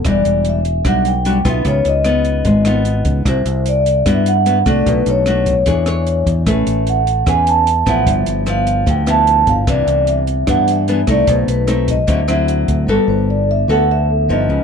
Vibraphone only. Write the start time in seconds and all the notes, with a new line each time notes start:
0.10 D5
0.49 E5
0.89 F#5
1.08 G5
1.49 E5
1.68 C#5
1.88 D#5
3.28 C5
3.69 D5
4.09 E5
4.28 F#5
4.69 D5
4.88 B4
5.10 C#5
6.48 E5
6.89 F#5
7.29 G#5
7.49 A5
7.88 F#5
8.09 E5
8.50 F5
8.90 G5
9.10 A5
9.49 F5
9.70 D5
10.09 E5
10.50 F#5
10.71 E5
11.11 D5
11.29 C5
11.49 B4
11.91 D#5
12.10 E5
13.09 C5
13.30 D5
13.51 E5
13.71 F#5
13.91 E5
14.32 D#5